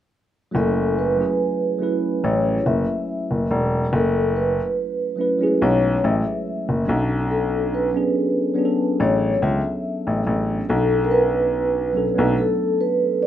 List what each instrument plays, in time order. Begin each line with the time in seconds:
0.51 grand piano F#1, tine electric piano F#3 A3 C#4 E4
0.56 vibraphone A4, tine electric piano G#5
0.99 vibraphone B4
1.16 tine electric piano F#3 A3 C#4 E4
1.21 tine electric piano G#4
1.78 tine electric piano F#3 A3 C#4 E4
1.83 tine electric piano B4
2.24 grand piano A1, vibraphone C#5
2.66 grand piano F#1, vibraphone E5
3.31 grand piano F#1
3.51 grand piano E1
3.93 grand piano F#1, vibraphone A4
4.36 vibraphone B4
5.16 tine electric piano F#3 A3 C#4 E4
5.21 tine electric piano B4
5.39 tine electric piano F#3 G#3 C#4 E4
5.43 tine electric piano A3 G#4
5.62 grand piano B1, vibraphone C#5
6.04 grand piano A1, vibraphone E5
6.69 grand piano F#1
6.85 tine electric piano F#3 B3 C#4 D4
6.89 grand piano B1, tine electric piano A4
7.31 vibraphone A4
7.74 vibraphone B4
7.92 tine electric piano F#3 B3 C#4 D4
7.97 tine electric piano G#4
8.54 tine electric piano F#3 B3 C#4 D4
8.59 tine electric piano G#4
8.65 tine electric piano A4
9.00 grand piano A1, vibraphone C#5
9.42 grand piano C#2, vibraphone E5
10.07 grand piano A1
10.27 grand piano A1
10.69 grand piano B1, vibraphone A4
11.04 vibraphone A#4
11.11 vibraphone B4
11.93 grand piano B1, tine electric piano F#3 B3 C#4 D4
11.97 tine electric piano A4
12.15 grand piano B1, tine electric piano F#3 A3 B3 D4
12.19 tine electric piano A4
12.38 vibraphone A4
12.81 vibraphone B4
13.22 vibraphone D5